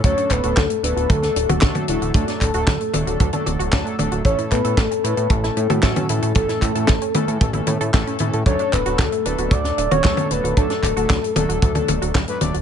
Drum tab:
HH |xxxxxxxxxxxxxxxx|xxxxxxxxxxxxxxxx|xxxxxxxxxxxxxxxx|xxxxxxxxxxxxxxxx|
CP |--x-x-------x---|--x-x-------x---|--x-x-------x---|--x-x-------x---|
SD |----o----o--o---|-o--o-------o---|----o----o--o---|-o--o-------o---|
T1 |-----------o-o--|------o--oo---o-|-----------o-o--|------o--oo---o-|
BD |o-o-o---o---o---|o-o-o---o---o---|o-o-o---o---o---|o-o-o---o---o---|

HH |xxxxxxxxxxxxxxxx|xxxxxxxxxxxxxxxx|
CP |--x-x-------x---|--x-x-------x---|
SD |----o----o--o---|-o--o-------o---|
T1 |-----------o-o--|------o--oo---o-|
BD |o-o-o---o---o---|o-o-o---o---o---|